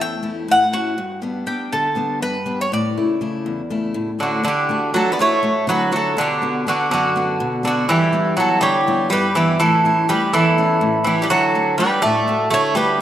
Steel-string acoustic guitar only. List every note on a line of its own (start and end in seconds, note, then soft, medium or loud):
0.00 0.47 E2 medium
0.00 0.14 A3 soft
0.00 0.14 C#4 soft
0.00 0.14 E4 soft
0.23 0.63 A3 soft
0.23 0.63 C#4 soft
0.23 0.63 E4 medium
0.48 0.96 A2 medium
0.73 0.93 A3 soft
0.73 0.93 C#4 soft
0.73 0.93 E4 soft
0.98 1.46 G2 medium
1.22 1.45 G3 soft
1.22 1.45 B3 soft
1.22 1.45 D4 soft
1.46 1.86 G3 soft
1.46 1.86 B3 soft
1.46 1.86 D4 soft
1.73 2.20 D3 medium
1.95 2.35 G3 soft
1.95 2.36 B3 soft
1.95 2.36 D4 soft
2.22 2.70 G2 medium
2.46 2.66 G3 soft
2.46 2.66 B3 soft
2.46 2.66 D4 soft
2.72 2.98 A2 medium
2.97 3.20 C#3 soft
2.97 3.20 A3 soft
2.97 3.21 E4 soft
3.21 3.60 C#3 soft
3.21 3.60 A3 soft
3.21 3.61 E4 soft
3.46 3.93 E2 medium
3.70 4.10 C#3 soft
3.70 4.10 A3 soft
3.70 4.10 E4 soft
3.94 4.42 A2 medium
4.19 4.39 A3 soft
4.19 4.39 C#4 soft
4.19 4.39 E4 soft
4.43 4.91 D3 medium
4.69 4.93 A3 soft
4.69 4.93 D4 soft
4.69 4.93 F#4 medium
4.94 5.33 A3 soft
4.94 5.33 D4 soft
4.94 5.33 F#4 soft
5.19 5.66 A2 medium
5.43 5.82 A3 soft
5.43 5.82 D4 soft
5.43 5.83 F#4 soft
5.67 6.15 D3 medium
5.92 6.11 A3 soft
5.92 6.12 D4 soft
5.92 6.12 F#4 soft
6.17 6.64 B2 medium
6.42 6.65 B3 soft
6.42 6.66 D4 soft
6.42 6.66 F#4 soft
6.67 7.05 B3 soft
6.67 7.06 D4 soft
6.67 7.06 F#4 medium
6.91 7.38 F#2 medium
7.16 7.55 B3 medium
7.16 7.55 D4 soft
7.16 7.55 F#4 medium
7.40 7.87 B2 medium
7.63 7.83 B3 soft
7.63 7.84 D4 soft
7.63 7.84 F#4 medium
7.89 8.36 G2 medium
8.13 8.36 G3 soft
8.13 8.36 B3 soft
8.13 8.36 E4 soft
8.37 8.76 G3 soft
8.37 8.76 B3 soft
8.37 8.77 E4 medium
8.62 9.09 D3 medium
8.87 9.26 G3 soft
8.87 9.26 B3 soft
8.87 9.27 E4 medium
9.12 9.59 G2 medium
9.35 9.55 G3 soft
9.35 9.55 B3 soft
9.35 9.56 E4 soft
9.62 10.08 A2 medium
9.85 10.08 A3 soft
9.85 10.08 C#4 soft
9.85 10.09 E4 medium
10.09 10.48 A3 soft
10.09 10.48 C#4 soft
10.09 10.48 E4 soft
10.34 10.81 E2 medium
10.58 10.97 A3 soft
10.58 10.97 C#4 soft
10.58 10.97 E4 soft
10.81 11.29 A2 medium
11.06 11.26 A3 soft
11.06 11.26 C#4 soft
11.06 11.26 E4 soft
11.31 11.78 D3 medium
11.55 11.78 A3 soft
11.55 11.78 D4 soft
11.55 11.78 F#4 soft
11.79 12.18 A3 soft
11.79 12.19 D4 soft
11.79 12.19 F#4 soft
12.04 12.51 A2 medium
12.27 12.67 A3 soft
12.27 12.67 D4 soft
12.27 12.68 F#4 medium
12.53 13.00 D3 medium
12.75 12.95 A3 soft
12.75 12.96 D4 soft
12.75 12.96 F#4 medium